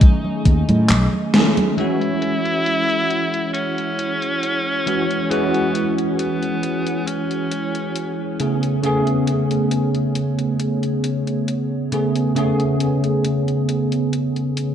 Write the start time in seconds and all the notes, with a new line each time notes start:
Already playing: D#3 A3 C#4 D#4 G#4 D#5 G#5 C#6
0.01 kick, closed hi-hat, high conga
0.25 high conga
0.45 D#2, kick, closed hi-hat
0.69 A2, closed hi-hat, high conga
0.89 B1, clap, closed hi-hat, high conga
1.13 high conga
1.33 D#3 A3 C#4 G#4, snare, closed hi-hat
1.57 closed hi-hat, high conga
1.77 E3 G#3 C#4 E4 F#4 G#4 C#5 F#5, closed hi-hat
2.01 closed hi-hat
2.22 closed hi-hat
2.45 closed hi-hat
2.66 closed hi-hat
2.90 closed hi-hat
3.10 closed hi-hat
3.34 closed hi-hat
3.53 C#4, closed hi-hat
3.78 closed hi-hat
3.99 closed hi-hat
4.22 closed hi-hat
4.43 closed hi-hat
4.86 E3 G#3 C#4 F#4, closed hi-hat
5.11 closed hi-hat
5.30 E3 G#3 B3 C#4 F#4 G#5, closed hi-hat
5.54 closed hi-hat
5.75 closed hi-hat
5.98 closed hi-hat
6.19 B3, closed hi-hat
6.42 closed hi-hat
6.63 closed hi-hat
6.87 closed hi-hat
7.07 C#4, closed hi-hat
7.31 closed hi-hat
7.51 closed hi-hat
7.75 closed hi-hat
7.96 closed hi-hat
8.40 C#3 A3 B3 G#4 C#5, closed hi-hat
8.63 closed hi-hat
8.83 C#3 A3 B3 G#4, closed hi-hat
9.07 closed hi-hat
9.27 closed hi-hat
9.51 closed hi-hat
9.71 closed hi-hat
9.95 closed hi-hat
10.15 closed hi-hat
10.39 closed hi-hat
10.60 closed hi-hat
10.83 closed hi-hat
11.04 closed hi-hat
11.27 closed hi-hat
11.48 closed hi-hat
11.92 C#3 A3 B3 G#4, closed hi-hat
12.16 closed hi-hat
12.35 C#3 A3 B3 G#4, closed hi-hat
12.60 closed hi-hat
12.80 closed hi-hat
13.04 closed hi-hat
13.25 closed hi-hat
13.48 closed hi-hat
13.69 closed hi-hat
13.92 closed hi-hat
14.13 closed hi-hat
14.36 closed hi-hat
14.57 closed hi-hat